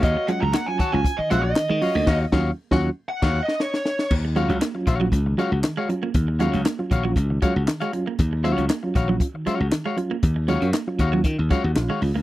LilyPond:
<<
  \new Staff \with { instrumentName = "Lead electric guitar" } { \time 4/4 \key ees \minor \tempo 4 = 118 ees''8 ges''16 bes''16 ges''16 aes''16 a''16 aes''8 ees''16 ges''16 ees''4~ ees''16~ | ees''16 r4. r16 \tuplet 3/2 { ges''4 ees''8 } des''4 | r1 | r1 |
r1 | r1 | }
  \new Staff \with { instrumentName = "Clean electric guitar" } { \time 4/4 \key ees \minor <ges' des'' f''>8 r4 <ges' des'' ges''>8 r8 <ges' des'' f''>8 r8 <ges' des'' f''>8 | <ges' des'' f''>8 <ges' des'' f''>8 r16 <ges' des'' ges''>8 r8 <ges' des'' f''>8 r4 r16 | r8 <ges' des'' f''>8 r8 <ges' des'' f''>8 r8 <ges' des'' f''>8 r16 <ges' des'' f''>8 r16 | r8 <ges' des'' f''>8 r8 <ges' des'' f''>8 r8 <ges' des'' f''>8 r16 <ges' des'' f''>8 r16 |
r8 <ges' des'' f''>8 r8 <ges' des'' f''>8 r8 <ges' des'' f''>8 r16 <ges' des'' f''>8 r16 | r8 <ges' des'' f''>8 r8 <ges' des'' f''>8 r8 <ges' des'' f''>8 r16 <ges' des'' f''>8 r16 | }
  \new Staff \with { instrumentName = "Reed electric piano" } { \time 4/4 \key ees \minor ees16 r16 <ges des' f'>16 <des' f'>16 r16 <ges des' f'>16 ees16 <ges des' f'>16 <des' f'>16 ees16 <ges des' f'>16 r16 ees16 r16 <ges des' f'>16 <des' f'>16 | r8 <ges des' f'>8 r16 <ges des' f'>8 r2 r16 | ees16 r16 <ges des' f'>16 <des' f'>16 r16 <ges des' f'>16 ees16 <ges des' f'>16 <des' f'>16 ees16 <ges des' f'>16 r16 ees16 r16 <ges des' f'>16 <des' f'>16 | ees16 r16 <ges des' f'>16 <des' f'>16 r16 <ges des' f'>16 ees16 <ges des' f'>16 <des' f'>16 ees16 <ges des' f'>16 r16 ees16 r16 <ges des' f'>16 <des' f'>16 |
ees16 r16 <ges des' f'>16 r8 <ges des' f'>16 ees16 <ges des' f'>16 <des' f'>16 ees16 <ges des' f'>16 r16 ees16 r16 <ges des' f'>16 <des' f'>16 | ees16 r16 <ges des' f'>16 <des' f'>16 r16 <ges des' f'>16 ees16 <ges des' f'>16 r16 ees16 <ges des' f'>16 r16 <des' f'>16 ees16 <des' f'>16 r16 | }
  \new Staff \with { instrumentName = "Clean electric guitar" } { \clef bass \time 4/4 \key ees \minor r8 aes16 ges16 bes16 r8 ges16 r8 aes16 r8 aes16 r16 bes16 | r1 | r8 aes16 ges16 bes16 r8 ges16 r8 aes16 r8 aes16 r16 bes16 | r8 aes16 ges16 bes16 r8 ges16 r8 aes16 r8 aes16 r16 bes16 |
r8 aes16 ges16 bes16 r8 ges16 r8 aes16 r8 aes16 r16 bes16 | r8 aes16 ges16 bes16 r8 ges16 r8 aes16 r8 aes16 r16 bes16 | }
  \new Staff \with { instrumentName = "Slap bass" } { \clef bass \time 4/4 \key ees \minor ees,16 r8 des,16 r8. des,16 r8 bes,,8 r16 ees16 r16 d,16 | ees,8 ees,8 r16 ees,8 r8 ees,8 r4 r16 | ees,8. des,16 r8 bes,,8 des,8 r16 des,16 r4 | ees,8. des,16 r8 bes,,8 des,8 r16 des,16 r4 |
ees,8. des,16 r8 bes,,8 r8. des,16 r4 | ees,8. ges,16 r8 ees,8 ees16 ees,16 r16 ees,16 bes,,16 r16 des,16 d,16 | }
  \new DrumStaff \with { instrumentName = "Drums" } \drummode { \time 4/4 <hh bd>8 hh8 <hc hh sn>8 <hh bd>8 <hh bd>8 hh8 <hc hh sn>8 hho8 | <cymc bd sn>8 <bd sn>8 r16 <bd sn>8. r16 <cymc bd sn>8 sn16 sn16 sn16 sn16 sn16 | <cymc bd>8 hh16 hh16 <hc hh sn>8 <hh bd>8 <hh bd>8 hh8 <hc hh sn>8 hh8 | <hh bd>8 hh16 hh16 <hc hh sn>8 <hh bd>8 <hh bd>8 <hh bd>8 <hc hh sn>16 hh16 hh8 |
<hh bd>8 hh16 hh16 <hc hh sn>8 <hh bd>8 <hh bd>8 hh8 <hc hh sn>8 hh8 | <hh bd>8 hh16 hh16 <hc hh sn>8 <hh bd>8 <hh bd>8 <hh bd>8 <hc hh sn>8 hho8 | }
>>